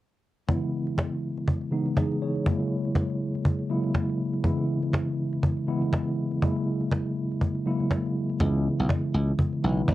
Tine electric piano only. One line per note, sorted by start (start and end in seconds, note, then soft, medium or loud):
0.48 1.34 C#3 medium
0.48 1.34 E3 medium
0.48 1.34 G#3 medium
0.48 1.35 B3 medium
0.48 1.35 E4 medium
1.71 2.36 C#3 medium
1.71 2.37 E3 medium
1.71 2.37 G#3 medium
1.71 2.37 B3 medium
1.71 1.97 D#4 medium
1.97 2.21 D#4 soft
1.97 2.21 G#4 medium
2.22 2.69 G#4 soft
2.22 2.69 C#5 medium
2.46 3.32 C#3 medium
2.46 3.32 F#3 medium
2.46 3.33 G#3 medium
2.46 3.33 A#3 medium
2.46 3.33 E4 medium
3.69 4.34 C#3 medium
3.69 4.35 F#3 medium
3.69 4.35 G#3 medium
3.69 4.35 A#3 medium
3.69 4.35 E4 medium
4.43 5.30 C#3 medium
4.43 5.30 E3 medium
4.43 5.30 G#3 medium
4.43 5.30 B3 medium
4.43 5.30 E4 medium
5.67 6.32 C#3 medium
5.67 6.32 E3 medium
5.67 6.33 G#3 medium
5.67 6.33 B3 medium
5.67 6.33 E4 medium
6.42 7.28 C#3 medium
6.42 7.28 F#3 medium
6.42 7.28 G#3 medium
6.42 7.28 A#3 medium
6.42 7.29 E4 medium
7.65 8.30 C#3 medium
7.65 8.30 F#3 medium
7.65 8.31 G#3 medium
7.65 8.31 A#3 medium
7.65 8.31 E4 medium
8.40 9.26 C#3 medium
8.40 9.26 E3 medium
8.40 9.26 G#3 medium
8.40 9.26 B3 medium
8.40 9.27 E4 medium
9.63 9.95 C#3 medium
9.63 9.95 E3 medium
9.63 9.95 G#3 medium
9.63 9.88 B3 medium
9.63 9.88 E4 medium
9.89 9.95 B3 medium
9.89 9.95 E4 medium